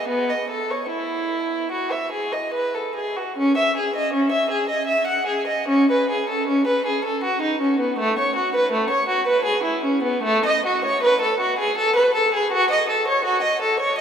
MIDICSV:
0, 0, Header, 1, 2, 480
1, 0, Start_track
1, 0, Key_signature, 4, "major"
1, 0, Tempo, 820793
1, 534, Time_signature, 3, 2, 24, 8
1, 1974, Key_signature, 4, "minor"
1, 1975, Tempo, 758534
1, 2935, Tempo, 801068
1, 3895, Tempo, 737101
1, 5815, Tempo, 786370
1, 6775, Tempo, 743494
1, 8706, End_track
2, 0, Start_track
2, 0, Title_t, "Violin"
2, 0, Program_c, 0, 40
2, 49, Note_on_c, 0, 59, 80
2, 168, Note_off_c, 0, 59, 0
2, 173, Note_on_c, 0, 75, 60
2, 293, Note_off_c, 0, 75, 0
2, 296, Note_on_c, 0, 69, 58
2, 412, Note_off_c, 0, 69, 0
2, 414, Note_on_c, 0, 73, 57
2, 528, Note_on_c, 0, 64, 62
2, 534, Note_off_c, 0, 73, 0
2, 1000, Note_off_c, 0, 64, 0
2, 1005, Note_on_c, 0, 66, 58
2, 1122, Note_on_c, 0, 76, 56
2, 1127, Note_off_c, 0, 66, 0
2, 1240, Note_on_c, 0, 68, 51
2, 1247, Note_off_c, 0, 76, 0
2, 1360, Note_on_c, 0, 75, 51
2, 1364, Note_off_c, 0, 68, 0
2, 1487, Note_off_c, 0, 75, 0
2, 1487, Note_on_c, 0, 71, 61
2, 1605, Note_on_c, 0, 69, 53
2, 1608, Note_off_c, 0, 71, 0
2, 1731, Note_on_c, 0, 68, 51
2, 1732, Note_off_c, 0, 69, 0
2, 1851, Note_on_c, 0, 66, 53
2, 1852, Note_off_c, 0, 68, 0
2, 1971, Note_off_c, 0, 66, 0
2, 1971, Note_on_c, 0, 61, 83
2, 2093, Note_off_c, 0, 61, 0
2, 2100, Note_on_c, 0, 76, 71
2, 2218, Note_off_c, 0, 76, 0
2, 2223, Note_on_c, 0, 68, 63
2, 2340, Note_off_c, 0, 68, 0
2, 2342, Note_on_c, 0, 75, 69
2, 2454, Note_on_c, 0, 61, 71
2, 2458, Note_off_c, 0, 75, 0
2, 2571, Note_on_c, 0, 76, 74
2, 2573, Note_off_c, 0, 61, 0
2, 2691, Note_off_c, 0, 76, 0
2, 2692, Note_on_c, 0, 68, 67
2, 2808, Note_on_c, 0, 75, 68
2, 2810, Note_off_c, 0, 68, 0
2, 2921, Note_on_c, 0, 76, 80
2, 2928, Note_off_c, 0, 75, 0
2, 3041, Note_off_c, 0, 76, 0
2, 3042, Note_on_c, 0, 78, 70
2, 3159, Note_on_c, 0, 68, 68
2, 3162, Note_off_c, 0, 78, 0
2, 3282, Note_on_c, 0, 75, 67
2, 3285, Note_off_c, 0, 68, 0
2, 3408, Note_on_c, 0, 61, 83
2, 3412, Note_off_c, 0, 75, 0
2, 3537, Note_off_c, 0, 61, 0
2, 3544, Note_on_c, 0, 71, 69
2, 3660, Note_on_c, 0, 68, 65
2, 3662, Note_off_c, 0, 71, 0
2, 3776, Note_off_c, 0, 68, 0
2, 3776, Note_on_c, 0, 69, 69
2, 3885, Note_on_c, 0, 61, 75
2, 3889, Note_off_c, 0, 69, 0
2, 4009, Note_off_c, 0, 61, 0
2, 4009, Note_on_c, 0, 71, 70
2, 4133, Note_off_c, 0, 71, 0
2, 4135, Note_on_c, 0, 68, 69
2, 4255, Note_on_c, 0, 69, 67
2, 4257, Note_off_c, 0, 68, 0
2, 4378, Note_off_c, 0, 69, 0
2, 4381, Note_on_c, 0, 66, 83
2, 4498, Note_on_c, 0, 63, 68
2, 4501, Note_off_c, 0, 66, 0
2, 4619, Note_off_c, 0, 63, 0
2, 4623, Note_on_c, 0, 61, 70
2, 4741, Note_off_c, 0, 61, 0
2, 4746, Note_on_c, 0, 59, 66
2, 4863, Note_off_c, 0, 59, 0
2, 4868, Note_on_c, 0, 57, 92
2, 4984, Note_off_c, 0, 57, 0
2, 4999, Note_on_c, 0, 73, 75
2, 5109, Note_off_c, 0, 73, 0
2, 5110, Note_on_c, 0, 66, 69
2, 5224, Note_off_c, 0, 66, 0
2, 5233, Note_on_c, 0, 71, 80
2, 5345, Note_off_c, 0, 71, 0
2, 5348, Note_on_c, 0, 57, 75
2, 5461, Note_off_c, 0, 57, 0
2, 5462, Note_on_c, 0, 73, 79
2, 5576, Note_off_c, 0, 73, 0
2, 5583, Note_on_c, 0, 66, 74
2, 5696, Note_off_c, 0, 66, 0
2, 5703, Note_on_c, 0, 71, 79
2, 5816, Note_off_c, 0, 71, 0
2, 5822, Note_on_c, 0, 68, 85
2, 5930, Note_off_c, 0, 68, 0
2, 5932, Note_on_c, 0, 64, 73
2, 6047, Note_off_c, 0, 64, 0
2, 6057, Note_on_c, 0, 61, 72
2, 6172, Note_off_c, 0, 61, 0
2, 6172, Note_on_c, 0, 59, 71
2, 6295, Note_off_c, 0, 59, 0
2, 6296, Note_on_c, 0, 57, 98
2, 6418, Note_off_c, 0, 57, 0
2, 6433, Note_on_c, 0, 75, 83
2, 6545, Note_off_c, 0, 75, 0
2, 6557, Note_on_c, 0, 66, 73
2, 6664, Note_off_c, 0, 66, 0
2, 6671, Note_on_c, 0, 73, 80
2, 6779, Note_off_c, 0, 73, 0
2, 6784, Note_on_c, 0, 71, 96
2, 6898, Note_off_c, 0, 71, 0
2, 6904, Note_on_c, 0, 69, 79
2, 7017, Note_off_c, 0, 69, 0
2, 7025, Note_on_c, 0, 66, 74
2, 7138, Note_off_c, 0, 66, 0
2, 7143, Note_on_c, 0, 68, 80
2, 7257, Note_off_c, 0, 68, 0
2, 7267, Note_on_c, 0, 69, 99
2, 7378, Note_off_c, 0, 69, 0
2, 7384, Note_on_c, 0, 71, 84
2, 7498, Note_off_c, 0, 71, 0
2, 7506, Note_on_c, 0, 69, 85
2, 7619, Note_off_c, 0, 69, 0
2, 7631, Note_on_c, 0, 68, 79
2, 7741, Note_off_c, 0, 68, 0
2, 7748, Note_on_c, 0, 66, 109
2, 7859, Note_off_c, 0, 66, 0
2, 7867, Note_on_c, 0, 75, 88
2, 7978, Note_off_c, 0, 75, 0
2, 7987, Note_on_c, 0, 69, 78
2, 8097, Note_off_c, 0, 69, 0
2, 8106, Note_on_c, 0, 73, 80
2, 8215, Note_on_c, 0, 66, 92
2, 8216, Note_off_c, 0, 73, 0
2, 8330, Note_on_c, 0, 75, 81
2, 8331, Note_off_c, 0, 66, 0
2, 8448, Note_off_c, 0, 75, 0
2, 8456, Note_on_c, 0, 69, 79
2, 8571, Note_on_c, 0, 73, 88
2, 8572, Note_off_c, 0, 69, 0
2, 8690, Note_off_c, 0, 73, 0
2, 8706, End_track
0, 0, End_of_file